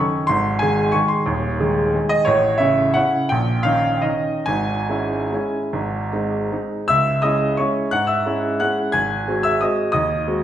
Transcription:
Already playing: D#3 C#4 A4 C#6
0.27 G#1 G#2 C6
0.59 D#3 G#3 G#4 G#5
0.92 D#3 G#3 G#4 C#6
1.08 C6
1.26 D#1 D#2
1.60 D#3 G#3 G#4
1.93 D#3 G#3 G#4
2.09 D#5
2.25 A1 A2 C#5
2.58 C#3 C#4 E4 E5
2.94 C#3 C#4 E4 F#5
3.29 A#1 A#2 G5
3.63 D#3 C#4 D#4 F5
4.02 D#3 C#4 D#4 D#5
4.46 G#1 G#2 G#5
4.89 G#3 C#4 E4
5.33 G#3 C#4 E4
5.73 G#1 G#2
6.13 G#3 C4 D#4
6.52 G#3 C4 D#4
6.88 C#2 E5 E6
7.22 G#3 C#4 E4 D#5 D#6
7.57 G#3 C#4 E4 C#5 C#6
7.91 G#2 F#5 F#6
8.07 E5 E6
8.26 G#3 C#4 E4
8.60 G#3 C#4 E4 F#5 F#6
8.92 G#1 G#5 G#6
9.28 G#3 C4 F#4
9.43 E5 E6
9.61 G#3 C4 F#4 D#5 D#6
9.92 D#2 D#5 D#6
10.28 G#3 C4 F#4

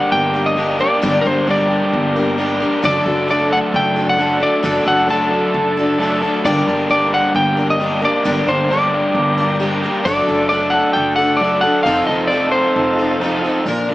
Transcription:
Already playing: G2 D3 G3 A#3 D4 G4 A#4 F#5
0.12 G1 G5
0.33 G3 A#3 D4 A#4
0.46 D#5
0.56 G3 A#3 D4 G4 A#4
0.79 G3 A#3 D4 G4 A#4 D5
1.02 G1 G2 D3 G3 A#3 D4 G4 A#4
1.21 G4 A#4
1.25 G1 G3 A#3 D4 C5
1.47 G2 D3 G3 A#3 D4 G4 A#4 D5
1.69 G3 A#3 D4 G4
1.93 G1
2.16 G3 A#3 D4 A#4
2.38 G3 A#3 D4 G4 A#4
2.60 A#3 D4 G4 A#4
2.64 G3
2.83 F#1 F#3 A3 D4 F#4 A4 D5
3.06 F#1 A3 D4 F#4 A4
3.28 F#3 A3 D4 F#4 A4 D5
3.50 A3 D4 A4 F#5
3.74 F#1 G5
3.96 D4 F#4 A4
4.09 F#5
4.19 F#3 A3 D4 F#4 A4
4.40 A3 D4 F#4 A4 D5
4.63 F#1 F#3 A3 D4 F#4 A4
4.86 F#1 A3 D4 F#4 A4 F#5
5.08 F#3 A3 D4 F#4 A5
5.13 A4
5.30 A3 D4 A4
5.54 F#1
5.77 D4 F#4 A4
5.99 F#3 A3 D4 F#4
6.04 A4
6.22 A3 D4 F#4 A4
6.44 G1 G2 D3 G3 A#3 D4 G4 A#4 D5
6.67 G1 G3 A#3 D4 G4 A#4
6.89 G2 D3 G3 A#3 D4 G4 D5
6.93 A#4
7.12 G3 A#3 D4 G4 F#5
7.35 G1 G5
7.57 G3 A#3 D4 A#4
7.70 D#5
7.80 G3 A#3 D4 G4 A#4
8.02 G3 A#3 D4 G4 A#4 D5
8.24 G1 G2 D3 G3 A#3 D4 G4 A#4
8.47 G1 G3 A#3 D4 G4 A#4 C5
8.69 G2 D3 G3 A#3 D4 G4 D5
8.74 A#4
8.92 G3 A#3 D4 G4
9.15 G1
9.38 G3 A#3 D4 A#4
9.60 G3 A#3 D4 G4 A#4
9.82 A#3 D4 G4 A#4
9.86 G3
10.05 F#1 F#3 A3 D4 F#4 A4 D5
10.28 F#1 A3 D4 F#4 A4
10.49 F#3 A3 D4 D5
10.53 F#4 A4
10.70 D4 A4 F#5
10.75 A3
10.93 F#1 G5
11.16 A4 F#5
11.20 D4 F#4
11.37 F#3 D5
11.41 A3 D4 F#4 A4
11.61 A3 F#4 A4 F#5
11.66 D4
11.83 F1 F3 C4 D#4 F4 A4 F5
11.88 D#4 A4
12.07 F1 D#4 A4 D#5
12.12 C4
12.27 F3 C4 D5
12.32 D#4 A4
12.52 C4 D#4 A4 C5
12.76 F1
12.99 C4 D#4 A4
13.21 F3 C4 D#4 A4
13.44 C4 D#4 A4
13.66 A#1 A#2 D3 F3 A#3 D4 F4 A#4
13.88 D3 D4 A#4

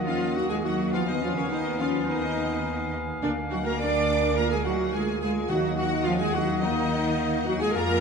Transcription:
Already playing: D#2 A#3 D#5 F#5
0.06 F3 C#4 F4 F5
0.35 F#3 D#4 F#4 F#5
0.49 G#3 F4 G#4 G#5
0.63 F#3 D#4 F#4 F#5
0.92 F3 B3 F4 F5 G#5
1.06 D#3 B3 D#4 D#5
1.21 F3 C#4 F4 F5
1.35 C#3 A#3 C#4 C#5
1.51 D#3 B3 D#4 D#5
1.79 F3 C#4 F4 F5
2.08 D#3 B3 D#4 D#5
3.22 D2 D3 A#3 D4 D5
3.51 F#3 D#4 F#4 F#5
3.65 A#3 F#4 A#4 A#5
3.79 D4 A#4 D5 D6
4.36 A#3 F4 A#4 A#5
4.51 G#3 F4 G#4 G#5
4.64 F#3 D#4 F#4 F#5
4.92 G#3 F4 G#4 G#5
5.21 G#3 F4 G#4 G#5
5.49 D#2 D#3 F#3 D#4 F#4 D#5 F#5
5.76 F#3 D#4 F#4 F#5
6.04 F3 C#4 F4 F5
6.17 G#3 G#4 G#5
6.21 F4 G#4
6.31 F#3 F#4 F#5
6.36 D#4
6.59 D#3 D#4 D#5
6.64 A#3 D#4
7.46 F#3 D#4 F#4 F#5
7.60 G#3 F4 G#4 G#5
7.73 F2 A#3 F4 A#4 D5 G#5 A#5

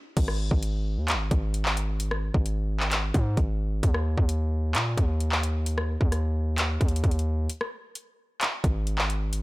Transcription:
0.17 G#1, kick, closed hi-hat, crash
0.28 cross-stick
0.51 G#1, kick
0.63 closed hi-hat
0.97 D#2
1.08 clap, closed hi-hat
1.14 G#1
1.31 G#1, kick, closed hi-hat
1.54 closed hi-hat
1.65 clap
1.77 closed hi-hat
2.00 closed hi-hat
2.11 cross-stick
2.34 G#1, kick
2.46 closed hi-hat
2.80 clap
2.91 clap, closed hi-hat
3.14 G#2, kick, closed hi-hat
3.37 G#1, kick, closed hi-hat
3.83 D#2, kick, closed hi-hat
3.94 cross-stick
4.18 D#2, kick
4.29 closed hi-hat
4.75 A#2, clap, closed hi-hat
4.98 D#2, kick, closed hi-hat
5.20 closed hi-hat
5.32 clap
5.43 closed hi-hat
5.66 closed hi-hat
5.78 cross-stick
6.01 D#2, kick
6.12 cross-stick, closed hi-hat
6.58 clap, closed hi-hat
6.81 D#2, kick, closed hi-hat
6.88 closed hi-hat
6.96 closed hi-hat
7.04 D#2, kick, closed hi-hat
7.11 closed hi-hat
7.19 closed hi-hat
7.50 closed hi-hat
7.61 cross-stick
7.95 closed hi-hat
8.41 clap, closed hi-hat
8.64 G#1, kick, closed hi-hat
8.87 closed hi-hat
8.98 clap
9.10 closed hi-hat
9.33 closed hi-hat

